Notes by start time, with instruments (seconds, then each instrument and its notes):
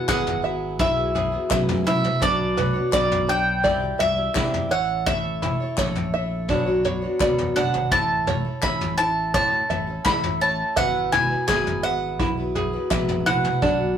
Already playing: five-string banjo E4 E5
0.08 fingered electric bass G#1, steel-string acoustic guitar G#2 E3 F#3 B3 E4 G#4, five-string banjo G#4, mandolin F#5, kick, snare, clap
0.27 floor tom
0.42 steel-string acoustic guitar F#3 B3 E4 G#4, five-string banjo E5
0.79 fingered electric bass B1, five-string banjo E4, mandolin E5, kick, floor tom
0.96 steel-string acoustic guitar F#3 B3 E4 G#4
1.14 steel-string acoustic guitar F#3 B3 E4 G#4, five-string banjo G#4, floor tom
1.32 steel-string acoustic guitar F#3 B3 E4 G#4
1.49 fingered electric bass F#2, steel-string acoustic guitar G#2 E3 F#3 B3 E4 G#4, five-string banjo E5, kick, clap, mid tom
1.69 floor tom
1.84 steel-string acoustic guitar F#3 B3 E4 G#4, five-string banjo E4, mandolin E5, mid tom
2.04 mid tom
2.19 fingered electric bass B1, steel-string acoustic guitar B2 F#3 B3 D4 F#4, five-string banjo D4, mandolin D5, kick, floor tom
2.56 steel-string acoustic guitar B3 D4 F#4 C#5, five-string banjo B4, floor tom, mid tom
2.73 steel-string acoustic guitar B3 D4 F#4 C#5
2.91 fingered electric bass B1, steel-string acoustic guitar B2 F#3 B3 D4 F#4, five-string banjo D5, mandolin D5, kick, clap
3.12 floor tom
3.27 steel-string acoustic guitar B3 D4 C#5, five-string banjo D4, mandolin G5
3.63 fingered electric bass C2, steel-string acoustic guitar C4 E4 G4 D5, five-string banjo D5, kick, floor tom
3.80 steel-string acoustic guitar E4 G4 D5
3.98 fingered electric bass C2, steel-string acoustic guitar C4 E4 G4 D5, five-string banjo E5, mandolin E5, floor tom
4.16 steel-string acoustic guitar E4 G4 D5
4.33 fingered electric bass C3, steel-string acoustic guitar C4 E4 G4 D5, five-string banjo E4, kick, snare, clap
4.54 floor tom
4.69 fingered electric bass A1, steel-string acoustic guitar A3 E4 A4 C#5, five-string banjo C#5, mandolin F#5
5.06 steel-string acoustic guitar A3 E4 A4 C#5, mandolin E5, five-string banjo E5, kick, floor tom
5.42 steel-string acoustic guitar A3 E4 A4 C#5, five-string banjo E4, floor tom, mid tom
5.60 steel-string acoustic guitar E4 A4 C#5
5.77 fingered electric bass A#1, steel-string acoustic guitar A3 E4 A4 C#5, five-string banjo C#5, kick, snare, clap
5.95 floor tom
6.14 steel-string acoustic guitar A3 E4 A4 C#5, five-string banjo E5
6.48 fingered electric bass B1, steel-string acoustic guitar B2 F#3 B3 D4 F#4 C#5, five-string banjo D4, kick, floor tom
6.66 steel-string acoustic guitar B3 D4 F#4 C#5
6.83 steel-string acoustic guitar B3 D4 F#4 C#5, five-string banjo C#5, floor tom
7.02 steel-string acoustic guitar B3 D4 F#4 C#5
7.20 fingered electric bass D1, steel-string acoustic guitar B2 F#3 B3 D4 F#4 C#5, five-string banjo D5, kick, clap, mid tom
7.38 fingered electric bass E1, floor tom
7.56 fingered electric bass F#1, steel-string acoustic guitar B3 D4 F#4 C#5, five-string banjo D4, mandolin F#5, mid tom
7.74 fingered electric bass G#1, mid tom
7.91 fingered electric bass A1, steel-string acoustic guitar A2 A3 C#4 E4 A4, five-string banjo E4, mandolin A5, kick, floor tom
8.27 steel-string acoustic guitar A3 C#4 E4 A4, five-string banjo C#5, floor tom, mid tom
8.45 steel-string acoustic guitar C#4 E4 A4
8.62 fingered electric bass A1, steel-string acoustic guitar A2 A3 C#4 E4 A4, five-string banjo E5, mandolin B5, kick, clap
8.81 floor tom
8.98 steel-string acoustic guitar A3 C#4 E4 A4, five-string banjo E4, mandolin A5
9.34 fingered electric bass A2, five-string banjo C#5, mandolin A5, kick, floor tom
9.51 steel-string acoustic guitar C#4 E4 A4
9.69 fingered electric bass A1, steel-string acoustic guitar A3 C#4 E4 A4, five-string banjo E5, floor tom
9.87 steel-string acoustic guitar C#4 E4 A4
10.05 fingered electric bass A1, steel-string acoustic guitar A2 A3 C#4 E4 A4, five-string banjo E4, mandolin B5, kick, snare, clap
10.23 floor tom
10.40 steel-string acoustic guitar A3 C#4 E4 A4, five-string banjo C#5, mandolin A5
10.76 fingered electric bass G#1, steel-string acoustic guitar G#2 E3 F#3 B3 E4 B4, five-string banjo E5, mandolin F#5, kick, floor tom
11.11 steel-string acoustic guitar F#3 B3 E4 B4, five-string banjo E4, mandolin G#5, floor tom, mid tom
11.30 steel-string acoustic guitar F#3 B3 E4 B4
11.47 fingered electric bass G#1, steel-string acoustic guitar G#2 E3 F#3 B3 E4 B4, five-string banjo G#4, mandolin G#5, kick, snare, clap
11.67 floor tom
11.82 steel-string acoustic guitar F#3 B3 E4 B4, five-string banjo E5, mandolin F#5
12.19 fingered electric bass B1, five-string banjo E4, kick, floor tom
12.37 steel-string acoustic guitar F#3 B3 E4 B4
12.55 steel-string acoustic guitar F#3 B3 E4 B4, five-string banjo G#4, floor tom
12.73 steel-string acoustic guitar F#3 B3 E4 B4
12.91 fingered electric bass A#1, steel-string acoustic guitar G#2 E3 F#3 B3 E4 B4, five-string banjo E5, kick, clap, mid tom
13.08 floor tom
13.26 steel-string acoustic guitar F#3 B3 E4 B4, five-string banjo E4, mandolin F#5, mid tom
13.44 mid tom
13.62 fingered electric bass B1, steel-string acoustic guitar B2 F#3 B3 D4 F#4 C#5, five-string banjo D4, kick, floor tom